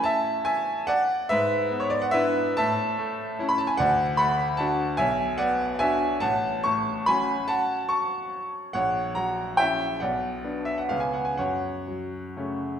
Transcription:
<<
  \new Staff \with { instrumentName = "Grand piano" } { \time 3/4 \key fis \minor \tempo 4 = 143 <e'' a''>4 <e'' gis''>4 <d'' fis''>4 | <b' e''>4~ <b' e''>16 cis''16 d''16 fis''16 <b' e''>4 | <e'' a''>2~ <e'' a''>16 b''16 a''16 gis''16 | <d'' fis''>4 <fis'' b''>4 <fis'' a''>4 |
<e'' gis''>4 <d'' fis''>4 <e'' gis''>4 | <fis'' a''>4 <a'' cis'''>4 <gis'' b''>4 | <fis'' a''>4 <a'' cis'''>4. r8 | <cis'' fis''>4 <fis'' ais''>4 <e'' g''>4 |
<d'' fis''>4. e''16 fis''16 eis''16 gis''16 fis''16 gis''16 | <cis'' fis''>2. | }
  \new Staff \with { instrumentName = "Grand piano" } { \time 3/4 \key fis \minor <a cis' e'>2. | gis,4 b4 <d' e'>4 | a,4 a4 <cis' e'>4 | d,4 a4 <d' fis'>4 |
b,,4 b4 <d' fis'>4 | a,,4 a,4 <fis cis' fis'>4~ | <fis cis' fis'>2. | ais,,4 fis4 <cis' e'>4 |
b,,4 <b d'>4 <cis, cis b cis'>4 | fis,4 fis4 <cis a cis'>4 | }
>>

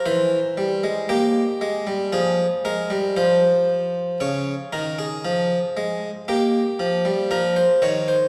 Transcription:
<<
  \new Staff \with { instrumentName = "Harpsichord" } { \time 4/4 \key des \major \tempo 4 = 58 c''4 g'4 aes'8 bes'8 c''4 | des''8 bes'16 aes'4~ aes'16 g'4 bes'16 c''16 des''16 c''16 | }
  \new Staff \with { instrumentName = "Harpsichord" } { \clef bass \time 4/4 \key des \major e8 g16 aes16 bes8 aes16 g16 f8 aes16 g16 f4 | des8 ees8 f8 aes8 bes8 f16 g16 f8 ees8 | }
>>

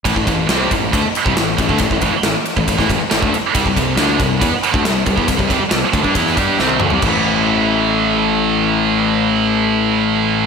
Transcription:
<<
  \new Staff \with { instrumentName = "Distorted electric guitar" } { \clef bass \time 4/4 \key a \minor \tempo 4 = 138 <a, e>16 <a, e>16 <a, e>8 <c g c'>8 <a, e>8 <d a>16 r8 <c g>16 <a, e>8 <a, e>16 <d a>16 | <a, e>16 <a, e>16 <a, e>16 r16 <a, e>16 r8 <a, e>16 <a, e>16 <a, e>16 <a, e>16 r16 <a, e>16 <d a>16 r8 | <c g>16 <c g>16 <c g>8 <d a d'>8 <c g>8 <e b>16 r8 <d a>16 <c g>8 <c g>16 <e b>16 | <c g>16 <c g>16 <c g>16 r16 <c g>16 r16 <d a>16 <g d'>16 <e b e'>8 <g d' g'>8 <c g c'>8 <d a>16 <c g>16 |
<a, e a>1~ | <a, e a>1 | }
  \new Staff \with { instrumentName = "Distorted electric guitar" } { \clef bass \time 4/4 \key a \minor <a, e>16 <a, e>16 <a, e>8 <c g c'>8 <a, e>8 <d a>16 r8 <c g>16 <a, e>8 <a, e>16 <d a>16 | <a, e>16 <a, e>16 <a, e>16 r16 <a, e>16 r8 <a, e>16 <a, e>16 <a, e>16 <a, e>16 r16 <a, e>16 <d a>16 r8 | <c g>16 <c g>16 <c g>8 <d a d'>8 <c g>8 <e b>16 r8 <d a>16 <c g>8 <c g>16 <e b>16 | <c g>16 <c g>16 <c g>16 r16 <c g>16 r16 <d a>16 <g d'>16 <e b e'>8 <g d' g'>8 <c g c'>8 <d a>16 <c g>16 |
<a, e a>1~ | <a, e a>1 | }
  \new Staff \with { instrumentName = "Fingered electric bass" } { \clef bass \time 4/4 \key a \minor a,,16 a,,16 a,,8 c,8 a,,8 d,16 r8 c,16 a,,8 a,,16 d,16 | a,,16 a,,16 a,,16 r16 a,,16 r8 a,,16 a,,16 a,,16 a,,16 r16 a,,16 d,16 r8 | c,16 c,16 c,8 d,8 c,8 e,16 r8 d,16 c,8 c,16 e,16 | c,16 c,16 c,16 r16 c,16 r16 d,16 g,16 e,8 g,8 c,8 d,16 c,16 |
a,,1~ | a,,1 | }
  \new DrumStaff \with { instrumentName = "Drums" } \drummode { \time 4/4 <bd cymr>16 bd16 <bd cymr>8 <cymr sn>8 <bd cymr>8 <bd cymr>8 cymr16 bd16 <cymr sn>8 <bd cymr>16 bd16 | <bd cymr>16 bd16 <bd cymr>8 <cymr sn>8 cymr16 bd16 <bd cymr>16 <bd sn>16 <bd cymr>8 <cymr sn>16 bd16 cymr8 | <bd cymr>16 bd16 <bd cymr>8 <cymr sn>8 <bd cymr>8 <bd cymr>8 cymr16 bd16 <cymr sn>8 <bd cymr>16 bd16 | <bd cymr>16 bd16 <bd cymr>8 <cymr sn>8 <bd cymr>16 bd16 <bd cymr>16 sn16 <bd cymr>8 sn16 tommh16 toml16 tomfh16 |
<cymc bd>4 r4 r4 r4 | r4 r4 r4 r4 | }
>>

